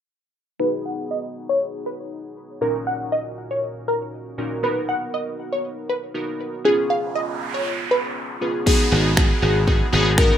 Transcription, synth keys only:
0.59 B3 D#4 F#4 G#4
2.61 A#2 C#4 D#4 F#4 A#4
4.38 A#2 C#4 D#4 F#4 A#4
4.63 B3 D#4 F#4 A#4
6.14 B3 D#4 F#4 A#4
6.65 B3 C#4 F4 G#4
8.41 B3 C#4 F4 G#4
8.66 B3 D#4 F#4 G#4
8.91 B3 D#4 F#4 G#4
9.17 B3 D#4 F#4 G#4
9.42 B3 D#4 F#4 G#4
9.67 B3 D#4 F#4 G#4
9.92 B3 D#4 F#4 G#4
10.18 B3 D#4 F#4 A#4

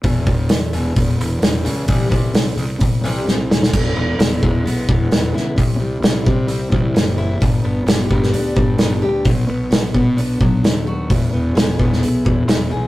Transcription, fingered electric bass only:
0.04 E1
0.74 E1
0.96 E1
1.20 E1
1.41 E1
1.67 C#2
1.88 C2
2.12 C2
2.35 C2
2.57 C2
2.81 C2
3.04 C2
3.27 C2
3.50 D#2
3.74 E1
3.96 E1
4.18 E1
4.43 E1
4.64 B1
4.89 E1
5.11 E1
5.33 C#2
5.58 C2
5.78 C2
6.02 C2
6.26 C3
6.48 C2
6.72 C2
6.95 F#1
7.41 G1
7.64 G1
7.86 G1
8.11 G1
8.33 D2
8.56 G1
8.80 G1
9.04 D2
9.25 B1
9.49 B1
9.72 B1
9.94 B2
10.17 B1
10.41 B1
10.63 D#2
11.10 E1
11.32 E1
11.56 E1
11.79 E1
12.02 B1
12.26 E1
12.47 E1
12.71 B1

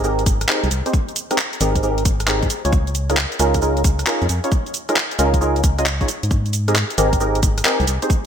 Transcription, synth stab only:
0.04 C4 D#4 G4 G#4 A#4
0.49 C4 D#4 G4 G#4 A#4
0.86 C4 D#4 G4 G#4 C5
1.31 C4 D#4 G4 G#4 A#4
1.61 C4 D#4 G4 G#4 A#4
1.83 C4 D#4 G4 G#4 A#4
2.28 C4 D#4 G4 G#4 A#4
2.65 C#4 D#4 F4 G#4 C#5
3.10 C#4 D#4 F4 G#4 A#4
3.40 C#4 D#4 F4 G#4 A#4
3.62 C#4 D#4 F4 G#4 A#4
4.07 C#4 D#4 F4 G#4 A#4
4.44 C#4 D#4 F4 G#4 C#5
4.89 C#4 D#4 F4 G#4 A#4
5.19 C#4 D#4 F4 G#4 A#4
5.41 C#4 D#4 F4 G#4 A#4
5.78 C#4 D#4 F4 G#4 D#5
6.01 C#4 D#4 F4 G#4 C#5
6.68 C4 D#4 G4 G#4 A#4
6.98 C4 D#4 G4 G#4 A#4
7.20 C4 D#4 G4 G#4 A#4
7.65 C4 D#4 G4 G#4 A#4
8.02 C4 D#4 G4 G#4 C5

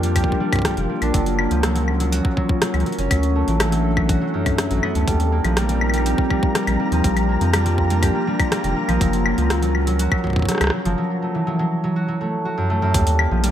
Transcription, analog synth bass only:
Already playing: F2
0.77 F1
1.02 A#1
1.14 F#1
1.51 C#2
2.74 C#2
2.98 F#1
3.11 D2
3.48 A1
4.71 A1
4.95 D2
5.08 D#2
5.44 A#1
6.67 A#1
6.92 D#2
7.04 A#1
7.41 F2
8.64 F1
8.89 A#1
9.01 F#1
9.38 C#2
10.61 C#2
10.85 F#1
12.94 D#2
13.31 A#1

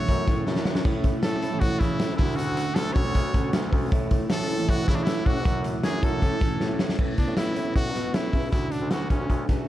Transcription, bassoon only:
0.08 F#2
0.28 A2
0.47 F#2
0.66 F#2
0.85 A2
1.24 A2
1.43 A2
1.61 A2
1.81 C#3
2.00 A2
2.19 D2
2.76 D2
2.96 D2
3.15 D2
3.34 D2
3.53 D2
3.72 D2
3.92 A2
4.29 A2
4.49 A2
4.69 A2
4.88 C#3
5.07 A2
5.26 A2
5.45 F#2
5.83 F#2
6.03 F#2
6.22 A2
6.60 A2
6.80 A2
6.99 A2
7.28 A2
7.37 A2
7.56 A2
7.76 A2
7.94 B2
8.14 A2
8.33 C#2
8.53 D2
8.81 D2
8.91 D2
9.10 D2
9.29 D2
9.49 E2

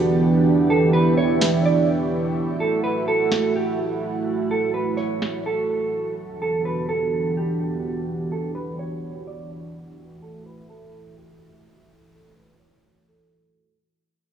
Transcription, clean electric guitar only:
0.70 A4
0.93 B4
1.17 C#5
1.65 D5
2.60 A4
2.84 B4
3.08 A4
3.56 G4
4.51 A4
4.74 B4
4.97 C#5
5.46 A4
6.42 A4
6.65 B4
6.89 A4
7.37 G4
8.32 A4
8.55 B4
8.79 C#5
9.27 D5
10.22 A4
10.46 B4
10.70 A4
11.18 G4
12.13 A4
12.36 B4
12.59 C#5
13.08 A4

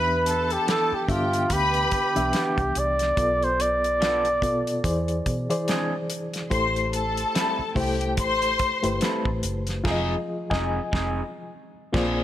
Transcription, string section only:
Already playing: B4 B5
0.26 A4 A5
1.09 G4 G5
1.50 B4 B5
6.51 C5 C6
6.94 A4 A5
7.77 G4 G5
8.19 C5 C6

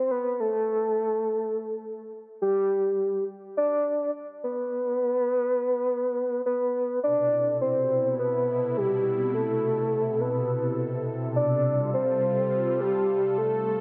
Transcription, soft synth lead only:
Already playing: C5
0.11 B4
0.40 A4
2.42 G4
3.57 D5
4.44 B4
6.46 B4
7.03 D5
7.61 C5
8.19 B4
8.77 G4
9.34 A4
10.21 B4
11.36 D5
11.94 C5
12.80 G4
13.38 A4

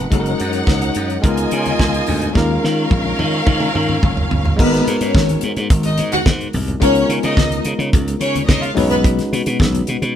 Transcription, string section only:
0.11 D#4 C#5 F#5
1.23 F4 D#5 G#5
2.35 C#4 A#4 F5
4.59 B3 B4
5.01 C#4 C#5
5.85 D#4 D#5
6.12 F#4 F#5
6.82 C#4 C#5
7.24 D#4 D#5
8.21 C#4 C#5
8.47 D#4 D#5
8.62 F4 F5
8.76 C#4 C#5
8.90 B3 B4

